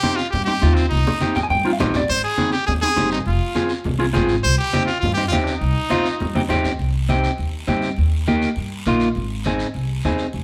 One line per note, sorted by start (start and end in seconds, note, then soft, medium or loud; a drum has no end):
0.00 0.19 C4 medium
0.00 0.19 D#4 medium
0.00 0.18 G4 loud
0.00 0.19 G4 medium
0.00 high conga medium
0.00 short guiro medium
0.16 0.30 F4 medium
0.16 short guiro medium
0.30 0.64 G2 medium
0.30 0.44 G4 medium
0.30 high conga soft
0.30 low conga medium
0.30 long guiro medium
0.45 0.52 C4 medium
0.45 0.53 D#4 medium
0.45 0.76 G4 loud
0.45 0.53 G4 medium
0.62 0.86 D#2 loud
0.62 0.83 C4 medium
0.62 0.83 D#4 medium
0.62 0.83 F4 medium
0.62 high conga medium
0.62 short guiro medium
0.74 0.88 C4 medium
0.74 short guiro medium
0.89 1.03 C2 medium
0.89 1.45 D#4 medium
0.89 high conga medium
0.89 long guiro medium
1.07 high conga medium
1.21 1.37 C4 medium
1.21 1.36 D#4 medium
1.21 1.37 G4 medium
1.21 high conga medium
1.21 short guiro medium
1.35 1.43 G5 medium
1.35 low conga medium
1.35 short guiro medium
1.43 1.50 G#5 medium
1.50 1.81 G2 medium
1.50 1.71 G5 medium
1.50 low conga medium
1.50 long guiro medium
1.65 1.70 C4 medium
1.65 1.70 D#4 medium
1.65 1.71 F4 medium
1.73 1.80 F5 medium
1.79 2.03 A#1 medium
1.79 2.01 C4 medium
1.79 2.01 D#4 medium
1.79 2.01 G4 medium
1.79 1.94 D#5 medium
1.79 low conga medium
1.79 short guiro medium
1.94 2.09 D5 medium
1.94 low conga medium
1.94 short guiro medium
2.08 2.21 G#1 medium
2.08 2.23 C5 loud
2.08 high conga soft
2.08 long guiro medium
2.24 2.51 G#4 loud
2.37 2.54 C4 medium
2.37 2.54 D#4 medium
2.37 2.54 G#4 medium
2.37 high conga medium
2.37 short guiro medium
2.52 2.66 G4 loud
2.52 short guiro medium
2.67 2.98 D#2 medium
2.67 2.74 G#4 medium
2.67 high conga soft
2.67 low conga medium
2.67 long guiro medium
2.82 2.88 C4 medium
2.82 2.88 D#4 medium
2.82 3.09 G#4 loud
2.82 2.88 G#4 medium
2.96 3.21 G1 medium
2.96 3.18 C4 medium
2.96 3.18 D#4 medium
2.96 3.18 G4 medium
2.96 high conga medium
2.96 short guiro medium
3.11 3.19 D#4 medium
3.11 short guiro medium
3.26 3.38 F1 medium
3.26 3.82 F4 medium
3.26 high conga soft
3.26 long guiro medium
3.55 3.71 C4 medium
3.55 3.71 F4 medium
3.55 3.71 G#4 medium
3.55 high conga medium
3.55 short guiro medium
3.69 short guiro medium
3.84 4.16 C2 medium
3.84 high conga soft
3.84 low conga medium
3.84 long guiro medium
3.99 4.05 C4 medium
3.99 4.05 F4 medium
3.99 4.05 G#4 medium
4.13 4.38 G#1 loud
4.13 4.35 C4 medium
4.13 4.35 F4 medium
4.13 4.35 G#4 medium
4.13 high conga medium
4.13 short guiro medium
4.29 short guiro medium
4.44 4.56 C2 loud
4.44 4.58 C5 loud
4.44 high conga soft
4.44 long guiro medium
4.58 4.85 G4 loud
4.73 4.89 C4 medium
4.73 4.89 D#4 medium
4.73 4.89 G4 medium
4.73 high conga medium
4.73 short guiro medium
4.86 5.00 F4 medium
4.86 short guiro medium
5.00 5.32 G2 medium
5.00 5.13 F4 medium
5.00 high conga soft
5.00 low conga medium
5.00 long guiro medium
5.14 5.23 C4 medium
5.14 5.28 G4 loud
5.18 5.23 D#4 medium
5.18 5.23 G4 medium
5.28 5.56 D#2 loud
5.28 5.53 C4 medium
5.28 5.53 D#4 medium
5.28 5.36 F4 medium
5.28 short guiro medium
5.33 5.53 G4 medium
5.33 high conga medium
5.44 6.45 D#4 medium
5.44 short guiro medium
5.61 5.73 C2 loud
5.61 high conga soft
5.61 long guiro medium
5.90 6.06 C4 medium
5.90 6.06 D#4 medium
5.90 6.07 F4 medium
5.90 high conga medium
5.90 short guiro medium
6.06 short guiro medium
6.20 6.50 G2 medium
6.20 high conga soft
6.20 low conga medium
6.20 long guiro medium
6.35 6.41 C4 medium
6.35 6.41 D#4 medium
6.35 6.41 G4 medium
6.35 high conga medium
6.49 6.74 D#2 medium
6.49 6.70 C4 medium
6.49 6.71 D#4 medium
6.49 6.71 G4 medium
6.49 low conga loud
6.49 short guiro medium
6.65 low conga medium
6.65 short guiro medium
6.79 7.27 C2 medium
6.79 high conga soft
6.79 long guiro medium
7.09 7.30 C4 medium
7.09 7.30 D#4 medium
7.09 7.30 G4 medium
7.09 high conga medium
7.09 short guiro medium
7.24 short guiro medium
7.38 7.62 D#2 medium
7.38 high conga soft
7.38 long guiro medium
7.67 7.92 G2 medium
7.67 7.89 C4 medium
7.67 7.89 D#4 medium
7.67 7.89 G4 medium
7.67 high conga medium
7.67 short guiro medium
7.82 short guiro medium
7.96 8.45 D#2 medium
7.96 high conga soft
7.96 long guiro medium
8.27 8.48 A#3 medium
8.27 8.48 D#4 medium
8.27 8.48 G4 medium
8.27 high conga medium
8.27 short guiro medium
8.42 short guiro medium
8.56 8.81 G2 medium
8.56 high conga soft
8.56 long guiro medium
8.86 9.10 A#1 medium
8.86 9.07 A#3 medium
8.86 9.08 D#4 medium
8.86 9.08 F4 medium
8.86 high conga medium
8.86 short guiro medium
9.00 short guiro medium
9.15 9.63 G#1 medium
9.15 high conga soft
9.15 long guiro medium
9.44 9.66 C4 medium
9.44 9.67 D#4 medium
9.44 9.67 G#4 medium
9.44 high conga medium
9.44 short guiro medium
9.59 short guiro medium
9.74 9.99 C2 medium
9.74 high conga soft
9.74 long guiro medium
10.03 10.28 D#2 loud
10.03 10.26 C4 medium
10.03 10.26 D#4 medium
10.03 10.26 G#4 medium
10.03 high conga medium
10.03 short guiro medium
10.18 short guiro medium
10.33 10.44 F1 medium
10.33 high conga soft
10.33 long guiro medium